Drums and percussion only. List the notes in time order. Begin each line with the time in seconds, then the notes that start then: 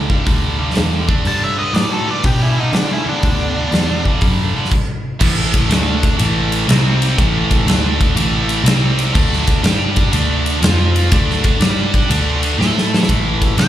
0.10 kick
0.26 kick, open hi-hat
0.70 snare
0.75 snare, open hi-hat
1.09 kick
1.25 open hi-hat
1.74 snare, open hi-hat
2.24 kick, open hi-hat
2.73 snare, open hi-hat
3.23 kick, open hi-hat
3.72 snare, open hi-hat
4.05 kick
4.21 kick, open hi-hat
4.65 snare
4.71 kick, crash
5.21 kick, crash
5.54 kick, ride
5.71 snare, ride
6.03 kick, ride
6.19 ride
6.52 ride
6.69 snare, ride
7.02 ride
7.18 kick, ride
7.51 kick, ride
7.68 snare, ride
8.01 kick, ride
8.17 ride
8.49 ride
8.66 snare, ride
8.99 ride
9.15 kick, crash
9.33 snare
9.47 kick, ride
9.64 snare, ride
9.96 kick, ride
10.13 ride
10.46 ride
10.63 snare, ride
10.96 ride
11.12 kick, ride
11.30 snare
11.44 kick, ride
11.61 snare, ride
11.94 kick, ride
12.11 ride
12.43 ride
12.61 snare
12.78 snare
12.94 snare
13.03 snare
13.09 kick, ride
13.42 kick, ride
13.58 snare, ride